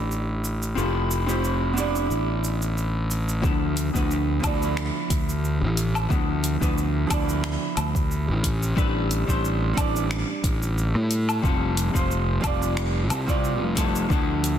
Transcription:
Already playing: A1 C4 D4 E4 G4 D5
0.11 cabasa
0.45 cabasa
0.63 cabasa
0.75 F1 C4 E4 F4 G4 A4, cabasa
1.11 cabasa
1.26 C4 E4 F4 G4 C5, cabasa
1.44 cabasa
1.73 B3 D4 E4
1.78 G4 D5, cabasa
1.95 cabasa
2.10 A1, cabasa
2.44 cabasa
2.62 cabasa
2.78 cabasa
3.11 cabasa
3.29 cabasa
3.42 D2 F3 B3 D4 E4 A4, kick, cabasa
3.77 closed hi-hat, cabasa
3.93 D2 F3 B3 D4 E4 B4, kick, cabasa
4.11 cabasa
4.40 D2 F3 B3 D4, kick, closed hi-hat, low woodblock
4.44 E4 D5, cabasa
4.62 cabasa
4.77 finger snap, cabasa
5.10 D2, kick, closed hi-hat, cabasa
5.29 cabasa
5.45 cabasa
5.61 A1
5.77 closed hi-hat, cabasa
5.95 cabasa, low woodblock
6.09 D2 F3 B3 D4 E4 A4, kick, cabasa
6.44 closed hi-hat, cabasa
6.60 D2 F3 B3 D4 E4 B4, kick, cabasa
6.78 cabasa
7.07 D2 F3 B3 D4, kick, closed hi-hat, low woodblock
7.11 E4 D5, cabasa
7.29 cabasa
7.44 finger snap, cabasa
7.77 D2, closed hi-hat, cabasa, low woodblock
7.95 kick, cabasa
8.11 cabasa
8.28 A1
8.44 kick, closed hi-hat, cabasa
8.63 cabasa
8.75 A1 G3 C4 D4 B4, kick, cabasa
9.11 closed hi-hat, cabasa
9.27 A1 G3 C4 D4 C5, kick, cabasa
9.45 cabasa
9.74 A1 G3 C4 D4, kick, closed hi-hat, low woodblock
9.78 D5, cabasa
9.96 cabasa
10.11 finger snap, cabasa
10.44 A1, kick, closed hi-hat, cabasa
10.63 cabasa
10.78 cabasa
10.95 A2
11.11 closed hi-hat, cabasa
11.29 cabasa, low woodblock
11.42 F1 G3 C4 E4 F4 A4, kick, cabasa
11.77 closed hi-hat, cabasa
11.93 F1 G3 C4 F4 C5, kick, cabasa
12.11 cabasa
12.40 F1 G3 C4 E4, kick, closed hi-hat, cabasa, low woodblock
12.45 F4 D5
12.62 cabasa
12.77 finger snap, cabasa
13.10 C2, closed hi-hat, cabasa, low woodblock
13.26 G3 C4 E4 F4 D5, kick, cabasa
13.44 cabasa
13.61 F1
13.75 G3 C4 E4 F4 A4, kick, closed hi-hat, cabasa
13.96 cabasa
14.09 D2 F3 B3 D4 E4 A4, kick, cabasa
14.44 closed hi-hat, cabasa

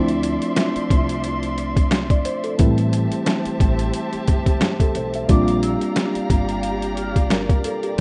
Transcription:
Already playing: D2 F3 A3 C4 D4 E4 D5 E5 C6
0.08 closed hi-hat
0.23 closed hi-hat
0.42 closed hi-hat
0.56 snare, closed hi-hat
0.76 muted upright bass stroke, closed hi-hat
0.90 C2, kick, closed hi-hat
1.09 closed hi-hat
1.24 closed hi-hat
1.43 closed hi-hat
1.58 closed hi-hat
1.77 kick, closed hi-hat
1.91 snare, closed hi-hat
2.10 D5, kick, closed hi-hat
2.25 C5, closed hi-hat
2.44 A4, closed hi-hat
2.58 A1 E3 G3 A3 C4 E4 G4 C5 E5 A5, kick, closed hi-hat
2.78 closed hi-hat
2.93 closed hi-hat
3.12 closed hi-hat
3.26 snare, closed hi-hat
3.45 muted upright bass stroke, closed hi-hat
3.60 A1, kick, closed hi-hat
3.79 closed hi-hat
3.94 closed hi-hat
4.13 muted upright bass stroke, closed hi-hat
4.28 G1, kick, closed hi-hat
4.46 kick, closed hi-hat
4.61 G4, snare, closed hi-hat
4.79 A4, kick, closed hi-hat
4.95 B1 C5, closed hi-hat
5.14 E5, closed hi-hat
5.28 A#1 G3 A#3 C4 D4 F4 G4 D5 F5 A#5 D6, kick, closed hi-hat
5.48 closed hi-hat
5.62 E6, closed hi-hat
5.81 closed hi-hat
5.96 snare, closed hi-hat
6.15 muted upright bass stroke, closed hi-hat
6.30 G1, kick, closed hi-hat
6.49 closed hi-hat
6.63 closed hi-hat
6.82 closed hi-hat
6.97 F6, closed hi-hat
7.16 kick, closed hi-hat
7.30 A#4, snare, closed hi-hat
7.49 kick, closed hi-hat
7.64 A4, closed hi-hat
7.83 G4, closed hi-hat

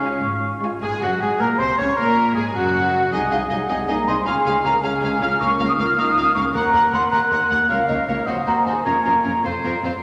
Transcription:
Already playing: C#2 C#3 G#3 C#4 F4 F5 C#6
0.04 G#3 F4 F5 G#5
0.23 G#1 G#2
0.62 G#3 F4 F5 G#5
0.81 G#1 G#2 G#3 G#4 G#5
1.01 F#1 F#2 F#3 F#4 F#5
1.20 G#1 G#2 G#3 G#4 G#5
1.39 A#1 A#2 A#3 A#4 A#5
1.58 C2 C3 C4 C5 C6
1.77 C#2 C#3 C#4 C#5 C#6
1.96 A#1 A#2 A#3 A#4 A#5
2.34 G#1 G#2 G#3 G#4 G#5
2.54 F#1 F#2 F#3 F#4 F#5
3.11 C2 G#3 D#4 G#4 D#5 G#5
3.30 C2 F3 D#4 G#4 D#5 F5
3.49 C2 F#3 D#4 G#4 D#5 F#5
3.69 C2 G#3 D#4 G#4 D#5 G#5
3.88 C2 A#3 D#4 G#4 D#5 A#5
4.07 C2 C4 D#4 G#4 D#5 C6
4.26 C#2 G#3 C#4 G#4 F5 G#5
4.45 C#2 C#4 G#4 F5
4.63 C#2 A#3 C#4 G#4 F5 A#5
4.82 C#2 G#3 C#4 G#4 F5 G#5
5.01 C#2 C#4 G#4 F5
5.20 C#2 C#4 F4 G#4 F5 F6
5.39 C#2 A#3 C#4 A#4 F5 C#6
5.59 C#2 A#3 A#4 F5
5.69 D#4 D#6
5.77 C#2 A#3 F4 A#4 F5 F6
5.97 C#2 A#3 D#4 A#4 F5 D#6
6.15 C#2 A#3 A#4 F5
6.34 C#2 A#3 C#4 A#4 F5 C#6
6.53 D#2 A#3 A#4 F#5 A#5
6.72 D#2 A#3 A#4 F#5
6.91 D#2 A#3 C4 A#4 F#5 C6
7.10 D#2 A#3 A#4 F#5 A#5
7.30 D#2 A#3 A#4 F#5
7.49 D#2 A#3 A#4 F#5
7.68 C#2 F3 A#3 A#4 C#5 F5
7.88 C#2 D#3 A#3 A#4 C#5 D#5
8.07 C#2 F3 A#3 A#4 C#5 F5
8.26 D#2 F#3 C4 F#4 C5 D#5 F#5
8.45 D#2 A#3 C4 F#4 C5 A#5
8.64 D#2 G#3 C4 F#4 C5 G#5
8.84 F1 F2 A#3 C#4 F4 A#4 C#5 A#5
9.04 F1 F2 C#4 F4 A#4
9.24 F1 F2 C#4 F4 A#4
9.43 F1 F2 C4 F4 A4 C5
9.63 F1 F2 C4 F4 A#4
9.82 F1 F2 C4 F4 C5

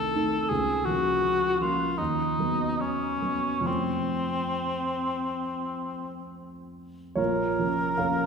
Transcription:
Already playing: C2 D#3 A3 D#4 A4
0.15 D#3 A3 D#4
0.49 C#2 G#4
0.85 F3 A#3 C#4 F#4
1.60 F3 A#3 C#4 F4
1.98 D#2 D#4
2.39 F#3 B3
2.80 C#4
3.22 F#3 B3
3.61 F2 F3 A3 C4
3.67 C4
7.15 A#1 F4 A#4 C#5
7.59 F3 A#3 C#4
7.98 F3 A#3 C#4 A#4 C#5 F5

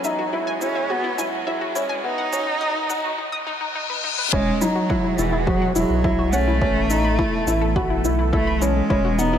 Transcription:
Already playing: E3 F#3 G#3 B3 F#4, riser
0.04 D#4 E5, shaker
0.19 F#4
0.33 E4
0.47 G#5
0.61 C#4 E4, shaker
0.75 E5
0.90 B3 F#4
1.04 E4
1.18 F#3 E4 G#5, shaker
1.47 E4 E5
1.61 F#4
1.75 G#3 C#4 E4, shaker
1.89 G#5
2.04 D#3 F#3 B3 D#4
2.18 F#5
2.32 C#4 F#4, shaker
2.47 D#4
2.61 D#4 D#6
2.90 D#4 F#5, shaker
3.04 F#4
3.18 D#4, reverse cymbal
3.32 D#6
3.47 D#4
3.61 D#4
3.75 D#4
3.90 B4
4.04 D#4
4.18 B4
4.33 E1 E3 G#3 B3 C#4 E4 F#4, kick
4.61 F#3 D#4 E4, shaker
4.76 F#4
4.90 E4 F#5, kick
5.04 E4
5.18 E1 E3 E4, shaker
5.33 E4
5.47 F#3 F#4, kick
5.62 F#5
5.76 E1 F#3 E4, shaker
5.90 B1
6.04 E4, kick
6.19 F#4
6.33 A3 C#4 F#5, shaker
6.48 E4
6.61 A1 A3 C#4 A4, kick
6.76 E4
6.90 D#4 A4, shaker
7.05 B5
7.19 E4, kick
7.47 A1 E4, shaker
7.61 A4
7.76 F#4 B5, kick
7.90 E4
8.04 B1 E4, shaker
8.19 E4
8.33 A3 E4 A4, kick
8.47 B5
8.62 G#3 C#4 E4, shaker
8.90 E1 G#3 C#4 E4 F#4, kick
9.05 F#4
9.18 B3 D#4 F#5, shaker
9.33 E4

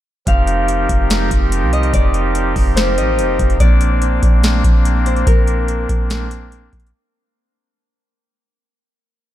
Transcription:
0.27 F1 F3 C4 D#4 G4 A#4 F5, kick, closed hi-hat
0.47 closed hi-hat
0.68 closed hi-hat
0.89 F1, kick, closed hi-hat
1.10 snare, closed hi-hat
1.31 F1, kick, closed hi-hat
1.52 closed hi-hat
1.62 C2
1.73 D#5, closed hi-hat
1.83 closed hi-hat
1.94 F1 D5, kick, closed hi-hat
2.14 closed hi-hat
2.35 closed hi-hat
2.56 F1, kick, open hi-hat
2.76 C5, snare, closed hi-hat
2.98 A1 D#5, closed hi-hat
3.19 F1, closed hi-hat
3.39 F1, kick, closed hi-hat
3.50 closed hi-hat
3.60 A#1 A#3 C4 D4 D5, kick, closed hi-hat
3.81 closed hi-hat
4.02 closed hi-hat
4.23 A#1, kick, closed hi-hat
4.43 snare, closed hi-hat
4.64 A#1, kick, closed hi-hat
4.85 closed hi-hat
5.06 C5, closed hi-hat
5.17 closed hi-hat
5.27 A#1 A#4, kick, closed hi-hat
5.47 closed hi-hat
5.68 closed hi-hat
5.89 A#1, kick, closed hi-hat
6.10 snare, closed hi-hat
6.31 closed hi-hat
6.52 closed hi-hat
6.73 A#1, kick, closed hi-hat
6.80 closed hi-hat
6.87 closed hi-hat

